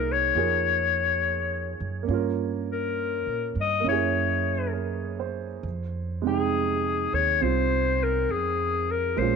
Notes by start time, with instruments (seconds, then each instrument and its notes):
Already playing: upright bass C2, grand piano A#3 D#4 F4 G#4, clarinet A#4
0.12 clarinet C#5
0.35 upright bass F2, grand piano F4 G#4 A#4
1.80 upright bass F#2
2.03 grand piano A#3 C#4
2.09 upright bass G2, grand piano F4
2.14 grand piano A#4
2.72 clarinet A#4
3.26 upright bass A#2
3.56 upright bass G2
3.61 clarinet D#5
3.80 grand piano A#3 C#4
3.85 upright bass F#2, grand piano E4
3.89 grand piano G#4, clarinet C#5
4.74 grand piano A#4
5.20 grand piano C5
5.63 upright bass F2
6.22 grand piano C3 G#3 D#4
6.27 clarinet G#4, grand piano G5
7.13 upright bass D#2, clarinet C#5
7.41 upright bass C2, grand piano C4 F4, clarinet C5
8.03 clarinet A#4
8.29 upright bass F2, clarinet G#4
8.91 clarinet A#4
9.16 upright bass A#1, grand piano G#3 A#3 C#4, clarinet C5
9.22 grand piano F4